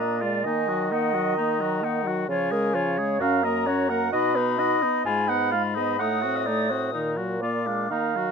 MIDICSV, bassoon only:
0, 0, Header, 1, 2, 480
1, 0, Start_track
1, 0, Key_signature, -6, "minor"
1, 0, Tempo, 460829
1, 469, Time_signature, 4, 2, 24, 8
1, 5268, Tempo, 469851
1, 7188, Tempo, 487805
1, 8544, End_track
2, 0, Start_track
2, 0, Title_t, "Bassoon"
2, 0, Program_c, 0, 70
2, 0, Note_on_c, 0, 46, 54
2, 481, Note_on_c, 0, 51, 63
2, 497, Note_off_c, 0, 46, 0
2, 2371, Note_off_c, 0, 51, 0
2, 2377, Note_on_c, 0, 49, 62
2, 3332, Note_on_c, 0, 42, 57
2, 3347, Note_off_c, 0, 49, 0
2, 4293, Note_off_c, 0, 42, 0
2, 4299, Note_on_c, 0, 47, 64
2, 4964, Note_off_c, 0, 47, 0
2, 5269, Note_on_c, 0, 44, 53
2, 6231, Note_on_c, 0, 45, 57
2, 6246, Note_off_c, 0, 44, 0
2, 7186, Note_on_c, 0, 46, 49
2, 7201, Note_off_c, 0, 45, 0
2, 8132, Note_off_c, 0, 46, 0
2, 8138, Note_on_c, 0, 51, 43
2, 8544, Note_off_c, 0, 51, 0
2, 8544, End_track
0, 0, End_of_file